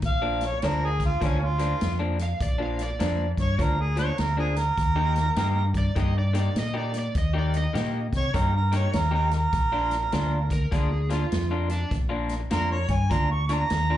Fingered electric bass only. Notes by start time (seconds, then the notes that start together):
0.03 A#1
0.63 D2
1.22 D2
1.82 F2
2.40 A#1
3.00 F2
3.37 G2
3.59 D2
4.19 D2
4.78 D#2
5.37 G2
5.96 G2
6.56 A#2
7.15 D#2
7.75 A#2
8.13 C3
8.34 G2
8.94 D#2
9.53 A#1
10.14 D2
10.72 D2
11.32 F2
11.91 A#1
12.52 F2
12.89 G2
13.11 D2
13.71 D#2